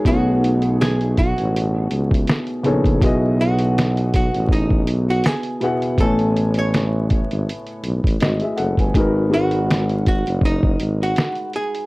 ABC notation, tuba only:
X:1
M:4/4
L:1/16
Q:"Swing 16ths" 1/4=81
K:G#phr
V:1 name="Tuba" clef=bass
B,,,6- B,,, A,,,3 C,,2 z2 ^A,,,2 | B,,,6- B,,, A,,,3 B,,,2 z4 | A,,,6- A,,, G,,, z2 B,,, A,,, G,,, z F,,, =G,,, | G,,,6- G,,, F,,,3 G,,,2 z4 |]